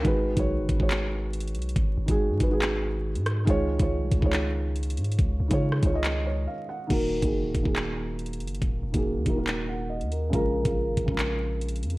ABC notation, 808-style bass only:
X:1
M:4/4
L:1/16
Q:1/4=140
K:Abdor
V:1 name="808-style bass" clef=bass
A,,,3 C,,2 G,,, A,,, A,,,6- A,,, C,,2 | A,,,2 A,,, A,,,2 A,, A,,,6- A,,, A,,3 | D,,3 D,,2 C,, D,, D,,6- D,, A,,2 | D,,2 D,, D,3 D,,6 z4 |
E,,,3 G,,,2 D,,, E,,, E,,,6- E,,, G,,,2 | E,,,2 E,,, E,,,2 E,, E,,,6- E,,, E,,3 | B,,,3 B,,,2 A,,, B,,, B,,,6- B,,, F,,2 |]